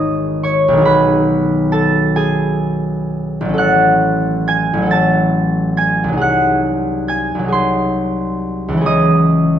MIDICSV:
0, 0, Header, 1, 2, 480
1, 0, Start_track
1, 0, Tempo, 863309
1, 477, Time_signature, 6, 3, 24, 8
1, 956, Tempo, 899550
1, 1436, Tempo, 953895
1, 1916, Tempo, 878477
1, 4316, Tempo, 902256
1, 5180, End_track
2, 0, Start_track
2, 0, Title_t, "Harp"
2, 0, Program_c, 0, 46
2, 0, Note_on_c, 0, 32, 67
2, 0, Note_on_c, 0, 51, 62
2, 0, Note_on_c, 0, 63, 58
2, 0, Note_on_c, 0, 68, 58
2, 0, Note_on_c, 0, 71, 93
2, 0, Note_on_c, 0, 73, 86
2, 0, Note_on_c, 0, 75, 87
2, 0, Note_on_c, 0, 80, 103
2, 0, Note_on_c, 0, 83, 118
2, 0, Note_on_c, 0, 87, 114
2, 240, Note_off_c, 0, 73, 0
2, 241, Note_on_c, 0, 85, 97
2, 247, Note_on_c, 0, 73, 79
2, 379, Note_on_c, 0, 35, 83
2, 396, Note_off_c, 0, 51, 0
2, 403, Note_on_c, 0, 51, 66
2, 423, Note_off_c, 0, 63, 0
2, 430, Note_on_c, 0, 63, 66
2, 444, Note_off_c, 0, 68, 0
2, 449, Note_off_c, 0, 32, 0
2, 451, Note_on_c, 0, 68, 61
2, 452, Note_off_c, 0, 80, 0
2, 468, Note_off_c, 0, 83, 0
2, 474, Note_off_c, 0, 71, 0
2, 474, Note_on_c, 0, 83, 108
2, 481, Note_on_c, 0, 71, 89
2, 501, Note_off_c, 0, 73, 0
2, 647, Note_off_c, 0, 85, 0
2, 956, Note_on_c, 0, 81, 106
2, 959, Note_on_c, 0, 69, 74
2, 1189, Note_off_c, 0, 68, 0
2, 1191, Note_on_c, 0, 80, 96
2, 1195, Note_on_c, 0, 68, 73
2, 1361, Note_off_c, 0, 81, 0
2, 1833, Note_on_c, 0, 33, 79
2, 1855, Note_on_c, 0, 54, 57
2, 1858, Note_off_c, 0, 87, 0
2, 1867, Note_off_c, 0, 75, 0
2, 1874, Note_on_c, 0, 61, 64
2, 1891, Note_off_c, 0, 35, 0
2, 1891, Note_off_c, 0, 69, 0
2, 1897, Note_on_c, 0, 69, 66
2, 1901, Note_off_c, 0, 51, 0
2, 1913, Note_off_c, 0, 63, 0
2, 1920, Note_on_c, 0, 90, 121
2, 1926, Note_on_c, 0, 78, 87
2, 1935, Note_off_c, 0, 83, 0
2, 1937, Note_off_c, 0, 80, 0
2, 1938, Note_off_c, 0, 71, 0
2, 1939, Note_off_c, 0, 68, 0
2, 2410, Note_on_c, 0, 92, 105
2, 2414, Note_on_c, 0, 80, 92
2, 2544, Note_off_c, 0, 33, 0
2, 2550, Note_on_c, 0, 33, 71
2, 2565, Note_off_c, 0, 54, 0
2, 2572, Note_on_c, 0, 54, 61
2, 2590, Note_off_c, 0, 61, 0
2, 2597, Note_on_c, 0, 61, 61
2, 2614, Note_off_c, 0, 69, 0
2, 2620, Note_on_c, 0, 69, 57
2, 2646, Note_on_c, 0, 93, 109
2, 2653, Note_on_c, 0, 81, 87
2, 2814, Note_off_c, 0, 92, 0
2, 3117, Note_off_c, 0, 80, 0
2, 3117, Note_on_c, 0, 92, 99
2, 3124, Note_on_c, 0, 80, 85
2, 3263, Note_on_c, 0, 36, 70
2, 3280, Note_off_c, 0, 54, 0
2, 3287, Note_on_c, 0, 54, 65
2, 3313, Note_on_c, 0, 63, 61
2, 3329, Note_off_c, 0, 33, 0
2, 3336, Note_on_c, 0, 68, 61
2, 3353, Note_off_c, 0, 61, 0
2, 3353, Note_off_c, 0, 90, 0
2, 3359, Note_on_c, 0, 90, 110
2, 3362, Note_off_c, 0, 78, 0
2, 3364, Note_off_c, 0, 69, 0
2, 3369, Note_on_c, 0, 78, 78
2, 3377, Note_off_c, 0, 93, 0
2, 3381, Note_off_c, 0, 81, 0
2, 3525, Note_off_c, 0, 92, 0
2, 3834, Note_off_c, 0, 80, 0
2, 3834, Note_on_c, 0, 92, 106
2, 3840, Note_on_c, 0, 80, 74
2, 3972, Note_off_c, 0, 36, 0
2, 3978, Note_on_c, 0, 36, 57
2, 3994, Note_off_c, 0, 54, 0
2, 4001, Note_on_c, 0, 54, 59
2, 4022, Note_off_c, 0, 63, 0
2, 4028, Note_on_c, 0, 63, 53
2, 4045, Note_off_c, 0, 68, 0
2, 4052, Note_on_c, 0, 68, 53
2, 4075, Note_on_c, 0, 84, 93
2, 4083, Note_on_c, 0, 72, 66
2, 4698, Note_on_c, 0, 37, 69
2, 4720, Note_on_c, 0, 52, 57
2, 4745, Note_on_c, 0, 61, 57
2, 4760, Note_off_c, 0, 68, 0
2, 4765, Note_off_c, 0, 36, 0
2, 4766, Note_on_c, 0, 68, 60
2, 4776, Note_off_c, 0, 54, 0
2, 4789, Note_off_c, 0, 63, 0
2, 4792, Note_on_c, 0, 87, 107
2, 4795, Note_on_c, 0, 75, 81
2, 4812, Note_off_c, 0, 84, 0
2, 4814, Note_off_c, 0, 90, 0
2, 4816, Note_off_c, 0, 72, 0
2, 4819, Note_off_c, 0, 78, 0
2, 5180, Note_off_c, 0, 37, 0
2, 5180, Note_off_c, 0, 52, 0
2, 5180, Note_off_c, 0, 61, 0
2, 5180, Note_off_c, 0, 68, 0
2, 5180, Note_off_c, 0, 75, 0
2, 5180, Note_off_c, 0, 80, 0
2, 5180, Note_off_c, 0, 87, 0
2, 5180, Note_off_c, 0, 92, 0
2, 5180, End_track
0, 0, End_of_file